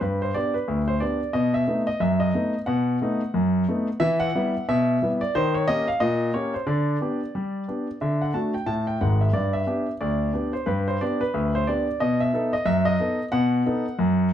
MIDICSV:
0, 0, Header, 1, 2, 480
1, 0, Start_track
1, 0, Key_signature, 1, "major"
1, 0, Tempo, 665927
1, 12, Time_signature, 2, 2, 24, 8
1, 10331, End_track
2, 0, Start_track
2, 0, Title_t, "Grand piano"
2, 0, Program_c, 0, 0
2, 6, Note_on_c, 0, 71, 68
2, 8, Note_on_c, 0, 43, 63
2, 150, Note_off_c, 0, 71, 0
2, 157, Note_on_c, 0, 72, 69
2, 214, Note_off_c, 0, 43, 0
2, 248, Note_on_c, 0, 74, 80
2, 253, Note_on_c, 0, 59, 42
2, 253, Note_on_c, 0, 62, 40
2, 255, Note_off_c, 0, 72, 0
2, 255, Note_on_c, 0, 67, 47
2, 385, Note_off_c, 0, 59, 0
2, 385, Note_off_c, 0, 62, 0
2, 386, Note_off_c, 0, 67, 0
2, 390, Note_on_c, 0, 71, 66
2, 391, Note_off_c, 0, 74, 0
2, 489, Note_on_c, 0, 38, 67
2, 583, Note_off_c, 0, 71, 0
2, 631, Note_on_c, 0, 72, 74
2, 694, Note_off_c, 0, 38, 0
2, 723, Note_on_c, 0, 74, 71
2, 726, Note_on_c, 0, 59, 45
2, 728, Note_on_c, 0, 62, 46
2, 731, Note_off_c, 0, 72, 0
2, 732, Note_on_c, 0, 67, 45
2, 859, Note_off_c, 0, 59, 0
2, 861, Note_off_c, 0, 62, 0
2, 864, Note_off_c, 0, 67, 0
2, 955, Note_off_c, 0, 74, 0
2, 961, Note_on_c, 0, 75, 79
2, 966, Note_on_c, 0, 47, 77
2, 1107, Note_off_c, 0, 75, 0
2, 1110, Note_on_c, 0, 76, 81
2, 1173, Note_off_c, 0, 47, 0
2, 1208, Note_on_c, 0, 57, 43
2, 1209, Note_on_c, 0, 59, 50
2, 1215, Note_on_c, 0, 63, 50
2, 1303, Note_off_c, 0, 76, 0
2, 1341, Note_off_c, 0, 57, 0
2, 1341, Note_off_c, 0, 59, 0
2, 1346, Note_off_c, 0, 63, 0
2, 1347, Note_on_c, 0, 75, 77
2, 1444, Note_on_c, 0, 42, 70
2, 1444, Note_on_c, 0, 76, 80
2, 1449, Note_off_c, 0, 75, 0
2, 1585, Note_on_c, 0, 75, 81
2, 1588, Note_off_c, 0, 76, 0
2, 1651, Note_off_c, 0, 42, 0
2, 1687, Note_on_c, 0, 57, 43
2, 1691, Note_on_c, 0, 59, 47
2, 1692, Note_on_c, 0, 63, 52
2, 1821, Note_off_c, 0, 57, 0
2, 1823, Note_off_c, 0, 59, 0
2, 1824, Note_off_c, 0, 63, 0
2, 1859, Note_off_c, 0, 75, 0
2, 1919, Note_on_c, 0, 78, 78
2, 1926, Note_on_c, 0, 47, 76
2, 2133, Note_off_c, 0, 47, 0
2, 2174, Note_on_c, 0, 57, 54
2, 2179, Note_on_c, 0, 59, 51
2, 2182, Note_on_c, 0, 63, 60
2, 2306, Note_off_c, 0, 57, 0
2, 2309, Note_off_c, 0, 59, 0
2, 2311, Note_off_c, 0, 63, 0
2, 2408, Note_on_c, 0, 42, 76
2, 2613, Note_off_c, 0, 42, 0
2, 2657, Note_on_c, 0, 57, 52
2, 2659, Note_on_c, 0, 59, 54
2, 2663, Note_on_c, 0, 63, 50
2, 2787, Note_off_c, 0, 57, 0
2, 2789, Note_off_c, 0, 59, 0
2, 2792, Note_off_c, 0, 63, 0
2, 2856, Note_off_c, 0, 78, 0
2, 2882, Note_on_c, 0, 76, 101
2, 2883, Note_on_c, 0, 52, 86
2, 3025, Note_on_c, 0, 78, 98
2, 3027, Note_off_c, 0, 76, 0
2, 3090, Note_off_c, 0, 52, 0
2, 3137, Note_on_c, 0, 55, 62
2, 3140, Note_on_c, 0, 59, 57
2, 3142, Note_on_c, 0, 64, 67
2, 3267, Note_off_c, 0, 55, 0
2, 3269, Note_off_c, 0, 59, 0
2, 3270, Note_off_c, 0, 64, 0
2, 3349, Note_off_c, 0, 78, 0
2, 3378, Note_on_c, 0, 47, 81
2, 3378, Note_on_c, 0, 76, 95
2, 3578, Note_off_c, 0, 47, 0
2, 3618, Note_on_c, 0, 55, 51
2, 3624, Note_on_c, 0, 59, 58
2, 3624, Note_on_c, 0, 64, 61
2, 3678, Note_off_c, 0, 76, 0
2, 3747, Note_off_c, 0, 55, 0
2, 3752, Note_off_c, 0, 59, 0
2, 3752, Note_off_c, 0, 64, 0
2, 3755, Note_on_c, 0, 74, 83
2, 3852, Note_off_c, 0, 74, 0
2, 3857, Note_on_c, 0, 72, 95
2, 3858, Note_on_c, 0, 51, 87
2, 3993, Note_off_c, 0, 72, 0
2, 3996, Note_on_c, 0, 73, 86
2, 4058, Note_off_c, 0, 51, 0
2, 4091, Note_on_c, 0, 75, 99
2, 4092, Note_off_c, 0, 73, 0
2, 4095, Note_on_c, 0, 61, 50
2, 4096, Note_on_c, 0, 58, 55
2, 4097, Note_on_c, 0, 67, 58
2, 4225, Note_off_c, 0, 61, 0
2, 4226, Note_off_c, 0, 58, 0
2, 4226, Note_off_c, 0, 67, 0
2, 4230, Note_off_c, 0, 75, 0
2, 4236, Note_on_c, 0, 77, 85
2, 4327, Note_on_c, 0, 75, 94
2, 4329, Note_on_c, 0, 46, 80
2, 4332, Note_off_c, 0, 77, 0
2, 4533, Note_off_c, 0, 46, 0
2, 4556, Note_off_c, 0, 75, 0
2, 4569, Note_on_c, 0, 73, 80
2, 4570, Note_on_c, 0, 58, 45
2, 4572, Note_on_c, 0, 61, 46
2, 4575, Note_on_c, 0, 67, 51
2, 4702, Note_off_c, 0, 58, 0
2, 4704, Note_off_c, 0, 61, 0
2, 4706, Note_off_c, 0, 67, 0
2, 4710, Note_off_c, 0, 73, 0
2, 4715, Note_on_c, 0, 72, 65
2, 4806, Note_on_c, 0, 50, 77
2, 4806, Note_on_c, 0, 74, 71
2, 4812, Note_off_c, 0, 72, 0
2, 5012, Note_off_c, 0, 50, 0
2, 5052, Note_on_c, 0, 59, 47
2, 5057, Note_on_c, 0, 62, 51
2, 5060, Note_on_c, 0, 67, 52
2, 5184, Note_off_c, 0, 59, 0
2, 5188, Note_off_c, 0, 62, 0
2, 5190, Note_off_c, 0, 67, 0
2, 5297, Note_on_c, 0, 55, 64
2, 5500, Note_off_c, 0, 55, 0
2, 5536, Note_on_c, 0, 59, 39
2, 5538, Note_on_c, 0, 62, 41
2, 5542, Note_on_c, 0, 67, 41
2, 5667, Note_off_c, 0, 59, 0
2, 5669, Note_off_c, 0, 62, 0
2, 5672, Note_off_c, 0, 67, 0
2, 5743, Note_off_c, 0, 74, 0
2, 5775, Note_on_c, 0, 76, 66
2, 5777, Note_on_c, 0, 50, 69
2, 5915, Note_off_c, 0, 76, 0
2, 5922, Note_on_c, 0, 78, 69
2, 5981, Note_off_c, 0, 50, 0
2, 6011, Note_on_c, 0, 81, 77
2, 6013, Note_on_c, 0, 57, 44
2, 6016, Note_on_c, 0, 62, 42
2, 6018, Note_off_c, 0, 78, 0
2, 6019, Note_on_c, 0, 66, 47
2, 6146, Note_off_c, 0, 57, 0
2, 6148, Note_off_c, 0, 62, 0
2, 6150, Note_off_c, 0, 66, 0
2, 6154, Note_off_c, 0, 81, 0
2, 6158, Note_on_c, 0, 79, 63
2, 6244, Note_on_c, 0, 45, 64
2, 6245, Note_on_c, 0, 81, 79
2, 6257, Note_off_c, 0, 79, 0
2, 6391, Note_off_c, 0, 81, 0
2, 6395, Note_on_c, 0, 79, 65
2, 6454, Note_off_c, 0, 45, 0
2, 6494, Note_on_c, 0, 44, 64
2, 6495, Note_off_c, 0, 79, 0
2, 6495, Note_on_c, 0, 78, 65
2, 6497, Note_on_c, 0, 32, 63
2, 6637, Note_off_c, 0, 78, 0
2, 6638, Note_on_c, 0, 76, 62
2, 6688, Note_off_c, 0, 44, 0
2, 6690, Note_off_c, 0, 32, 0
2, 6727, Note_on_c, 0, 43, 65
2, 6729, Note_on_c, 0, 74, 77
2, 6737, Note_off_c, 0, 76, 0
2, 6871, Note_on_c, 0, 76, 75
2, 6874, Note_off_c, 0, 74, 0
2, 6936, Note_off_c, 0, 43, 0
2, 6966, Note_on_c, 0, 59, 45
2, 6970, Note_on_c, 0, 62, 45
2, 6973, Note_on_c, 0, 67, 51
2, 7102, Note_off_c, 0, 59, 0
2, 7105, Note_off_c, 0, 62, 0
2, 7106, Note_off_c, 0, 67, 0
2, 7146, Note_off_c, 0, 76, 0
2, 7212, Note_on_c, 0, 74, 74
2, 7215, Note_on_c, 0, 38, 66
2, 7420, Note_off_c, 0, 38, 0
2, 7449, Note_on_c, 0, 59, 44
2, 7450, Note_on_c, 0, 62, 43
2, 7457, Note_on_c, 0, 67, 46
2, 7577, Note_off_c, 0, 74, 0
2, 7584, Note_off_c, 0, 59, 0
2, 7584, Note_off_c, 0, 62, 0
2, 7589, Note_off_c, 0, 67, 0
2, 7591, Note_on_c, 0, 72, 67
2, 7684, Note_on_c, 0, 71, 73
2, 7689, Note_on_c, 0, 43, 70
2, 7694, Note_off_c, 0, 72, 0
2, 7832, Note_off_c, 0, 71, 0
2, 7840, Note_on_c, 0, 72, 73
2, 7897, Note_off_c, 0, 43, 0
2, 7937, Note_on_c, 0, 74, 77
2, 7939, Note_off_c, 0, 72, 0
2, 7939, Note_on_c, 0, 62, 47
2, 7940, Note_on_c, 0, 59, 49
2, 7945, Note_on_c, 0, 67, 50
2, 8071, Note_off_c, 0, 59, 0
2, 8071, Note_off_c, 0, 62, 0
2, 8075, Note_off_c, 0, 67, 0
2, 8078, Note_off_c, 0, 74, 0
2, 8078, Note_on_c, 0, 71, 81
2, 8174, Note_on_c, 0, 38, 68
2, 8306, Note_off_c, 0, 71, 0
2, 8325, Note_on_c, 0, 72, 80
2, 8379, Note_off_c, 0, 38, 0
2, 8413, Note_on_c, 0, 74, 76
2, 8419, Note_on_c, 0, 59, 49
2, 8420, Note_off_c, 0, 72, 0
2, 8420, Note_on_c, 0, 62, 47
2, 8424, Note_on_c, 0, 67, 47
2, 8550, Note_off_c, 0, 59, 0
2, 8551, Note_off_c, 0, 62, 0
2, 8554, Note_off_c, 0, 67, 0
2, 8642, Note_off_c, 0, 74, 0
2, 8652, Note_on_c, 0, 75, 88
2, 8655, Note_on_c, 0, 47, 75
2, 8794, Note_off_c, 0, 75, 0
2, 8797, Note_on_c, 0, 76, 78
2, 8859, Note_off_c, 0, 47, 0
2, 8891, Note_on_c, 0, 59, 50
2, 8894, Note_on_c, 0, 63, 49
2, 8898, Note_on_c, 0, 69, 62
2, 9024, Note_off_c, 0, 59, 0
2, 9024, Note_off_c, 0, 76, 0
2, 9026, Note_off_c, 0, 63, 0
2, 9029, Note_off_c, 0, 69, 0
2, 9032, Note_on_c, 0, 75, 81
2, 9122, Note_on_c, 0, 42, 76
2, 9122, Note_on_c, 0, 76, 96
2, 9133, Note_off_c, 0, 75, 0
2, 9264, Note_on_c, 0, 75, 93
2, 9268, Note_off_c, 0, 76, 0
2, 9330, Note_off_c, 0, 42, 0
2, 9370, Note_on_c, 0, 59, 50
2, 9370, Note_on_c, 0, 63, 53
2, 9374, Note_on_c, 0, 69, 58
2, 9502, Note_off_c, 0, 59, 0
2, 9503, Note_off_c, 0, 63, 0
2, 9506, Note_off_c, 0, 69, 0
2, 9539, Note_off_c, 0, 75, 0
2, 9599, Note_on_c, 0, 78, 95
2, 9603, Note_on_c, 0, 47, 85
2, 9810, Note_off_c, 0, 47, 0
2, 9846, Note_on_c, 0, 59, 61
2, 9848, Note_on_c, 0, 63, 59
2, 9851, Note_on_c, 0, 69, 52
2, 9979, Note_off_c, 0, 59, 0
2, 9981, Note_off_c, 0, 63, 0
2, 9983, Note_off_c, 0, 69, 0
2, 10082, Note_on_c, 0, 42, 81
2, 10289, Note_off_c, 0, 42, 0
2, 10331, Note_off_c, 0, 78, 0
2, 10331, End_track
0, 0, End_of_file